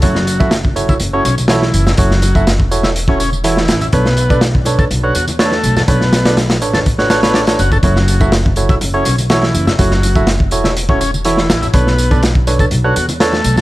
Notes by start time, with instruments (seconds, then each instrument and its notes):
0.02 upright bass F#1, transistor combo organ F#3, tine electric piano E4 F#4 A4 C#5, kick, closed hi-hat, tambourine, high bongo
0.15 snare
0.27 closed hi-hat, tambourine
0.40 tine electric piano E4 F#4 A4 E5, kick, tambourine, high bongo
0.51 snare, closed hi-hat, tambourine
0.64 kick, high bongo
0.76 tine electric piano E4 F#4 A4 C#5, closed hi-hat, tambourine
0.88 transistor combo organ E4, kick, tambourine, high conga, low conga
1.00 upright bass F#1, closed hi-hat, tambourine, high bongo
1.13 transistor combo organ C#4, tine electric piano E4 F#4 A4 C#5
1.25 upright bass B1, transistor combo organ C#4, closed hi-hat, tambourine, high bongo
1.38 closed hi-hat, tambourine, high conga
1.48 transistor combo organ E3, tine electric piano E4 F#4 A4 C#5, snare, closed hi-hat, tambourine
1.62 snare, high bongo
1.74 upright bass F#1, closed hi-hat, tambourine
1.86 transistor combo organ E4, snare, tambourine, high bongo, low conga
1.97 upright bass F#1, transistor combo organ F#3, tine electric piano E4 F#4 A4 C#5, kick, closed hi-hat, tambourine
2.11 snare
2.22 closed hi-hat, tambourine, high bongo
2.35 tine electric piano E4 F#4 A4 E5, kick, tambourine
2.47 snare, closed hi-hat, tambourine, high bongo
2.60 kick
2.71 upright bass E1, tine electric piano E4 F#4 A4 C#5, closed hi-hat, tambourine
2.83 transistor combo organ E4, snare, tambourine, high bongo, high conga
2.96 closed hi-hat, tambourine
3.08 transistor combo organ C#4, tine electric piano E4 F#4 A4 C#5, kick, high bongo
3.20 transistor combo organ C#4, closed hi-hat, tambourine
3.32 tambourine, high conga
3.44 transistor combo organ E3, tine electric piano E4 F#4 A4 C#5, closed hi-hat, tambourine, high bongo
3.57 snare
3.68 upright bass A1, snare, closed hi-hat, tambourine, high bongo
3.81 transistor combo organ E4, closed hi-hat, tambourine, low conga
3.93 upright bass B1, transistor combo organ B3, tine electric piano D4 A4 B4 C#5, kick, closed hi-hat, tambourine
4.06 snare, high bongo
4.17 closed hi-hat, tambourine
4.30 tine electric piano D4 A4 B4 D5, kick, tambourine, high bongo
4.41 snare, closed hi-hat, tambourine
4.55 kick
4.65 tine electric piano D4 A4 B4 C#5, closed hi-hat, tambourine, high bongo
4.79 transistor combo organ A4, kick, tambourine, high conga, low conga
4.90 upright bass B1, closed hi-hat, tambourine, high bongo
5.04 tine electric piano D4 A4 B4 C#5, transistor combo organ F#4
5.15 upright bass E2, transistor combo organ F#4, closed hi-hat, tambourine
5.28 closed hi-hat, tambourine, high bongo, high conga
5.39 transistor combo organ A3, tine electric piano D4 A4 B4 C#5, snare, closed hi-hat, tambourine
5.52 snare, high bongo
5.63 upright bass B1, closed hi-hat, tambourine
5.76 transistor combo organ A4, snare, tambourine, low conga
5.88 upright bass B1, transistor combo organ B3, tine electric piano D4 A4 B4 C#5, kick, closed hi-hat, tambourine, high bongo
6.01 snare
6.12 snare, closed hi-hat, tambourine, high bongo
6.25 tine electric piano D4 A4 B4 D5, snare, closed hi-hat, tambourine
6.37 snare, closed hi-hat, tambourine
6.50 snare, closed hi-hat, high bongo
6.61 upright bass A1, tine electric piano D4 A4 B4 C#5, closed hi-hat, tambourine
6.74 transistor combo organ A4, snare, tambourine, high bongo, high conga, low conga
6.86 kick, closed hi-hat, tambourine
6.98 tine electric piano D4 A4 B4 C#5, transistor combo organ F#4, snare
7.10 tine electric piano D4 A4 B4 C#5, transistor combo organ F#4, snare, closed hi-hat, tambourine, high bongo
7.23 transistor combo organ B3, tine electric piano D4 A4 B4 C#5, snare, closed hi-hat, tambourine, high conga
7.34 transistor combo organ D4, snare, closed hi-hat, tambourine, high bongo
7.47 tine electric piano D4 A4 B4 C#5, snare, closed hi-hat
7.59 upright bass F#1, transistor combo organ F#4, closed hi-hat, tambourine
7.72 transistor combo organ A4, kick, tambourine, high bongo, low conga
7.83 upright bass F#1, transistor combo organ F#3, tine electric piano E4 F#4 A4 C#5, kick, closed hi-hat, tambourine, high bongo
7.96 snare
8.08 closed hi-hat, tambourine
8.21 tine electric piano E4 F#4 A4 E5, kick, tambourine, high bongo
8.32 snare, closed hi-hat, tambourine
8.46 kick, high bongo
8.56 tine electric piano E4 F#4 A4 C#5, closed hi-hat, tambourine
8.69 transistor combo organ E4, kick, tambourine, high conga, low conga
8.81 upright bass F#1, closed hi-hat, tambourine, high bongo
8.94 transistor combo organ C#4, tine electric piano E4 F#4 A4 C#5
9.05 upright bass B1, transistor combo organ C#4, closed hi-hat, tambourine, high bongo
9.18 closed hi-hat, tambourine, high conga
9.30 transistor combo organ E3, tine electric piano E4 F#4 A4 C#5, snare, closed hi-hat, tambourine
9.42 snare, high bongo
9.54 upright bass F#1, closed hi-hat, tambourine
9.67 transistor combo organ E4, snare, tambourine, high bongo, low conga
9.79 upright bass F#1, transistor combo organ F#3, tine electric piano E4 F#4 A4 C#5, kick, closed hi-hat, tambourine
9.91 snare
10.03 closed hi-hat, tambourine, high bongo
10.16 tine electric piano E4 F#4 A4 E5, kick, tambourine
10.27 snare, closed hi-hat, tambourine, high bongo
10.40 kick
10.51 upright bass E1, tine electric piano E4 F#4 A4 C#5, closed hi-hat, tambourine
10.64 transistor combo organ E4, snare, tambourine, high bongo, high conga
10.77 closed hi-hat, tambourine
10.89 transistor combo organ C#4, tine electric piano E4 F#4 A4 C#5, kick, high bongo
11.01 transistor combo organ C#4, closed hi-hat, tambourine
11.14 tambourine, high conga
11.24 transistor combo organ E3, tine electric piano E4 F#4 A4 C#5, closed hi-hat, tambourine, high bongo
11.37 snare
11.50 upright bass A1, snare, closed hi-hat, tambourine, high bongo
11.62 transistor combo organ E4, closed hi-hat, tambourine, low conga
11.74 upright bass B1, transistor combo organ B3, tine electric piano D4 A4 B4 C#5, kick, closed hi-hat, tambourine
11.87 snare, high bongo
11.98 closed hi-hat, tambourine
12.11 tine electric piano D4 A4 B4 D5, kick, tambourine, high bongo
12.23 snare, closed hi-hat, tambourine
12.35 kick
12.47 tine electric piano D4 A4 B4 C#5, closed hi-hat, tambourine, high bongo
12.59 transistor combo organ A4, kick, tambourine, high conga, low conga
12.71 upright bass B1, closed hi-hat, tambourine, high bongo
12.84 tine electric piano D4 A4 B4 C#5, transistor combo organ F#4
12.96 upright bass E2, transistor combo organ F#4, closed hi-hat, tambourine
13.08 closed hi-hat, tambourine, high bongo, high conga
13.20 transistor combo organ A3, tine electric piano D4 A4 B4 C#5, snare, closed hi-hat, tambourine
13.33 snare, high bongo
13.44 upright bass B1, closed hi-hat, tambourine
13.56 transistor combo organ A4, snare, tambourine, low conga